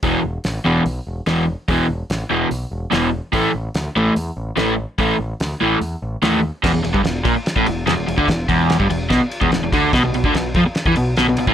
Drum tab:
CC |----------------|----------------|----------------|----------------|
RD |----------------|----------------|----------------|----------------|
HH |o---o---o---o---|o---o---o---o---|o---o---o---o---|o---o---o---o---|
SD |----o-------o---|----o-------o---|----o-------o---|----o-------o---|
BD |o---------------|o---------------|o---------------|o---------------|

CC |x---------------|----------------|----------------|
RD |--x-x-x-x-x-x-x-|x-x-x-x-x-x-x-x-|x-x-x-x-x-x-x-x-|
HH |----------------|----------------|----------------|
SD |o---o---o---o---|o---o---o---o---|o---o---o---o---|
BD |o--o--o--o-----o|o-o--o--o--o--o-|o--o--o--o-----o|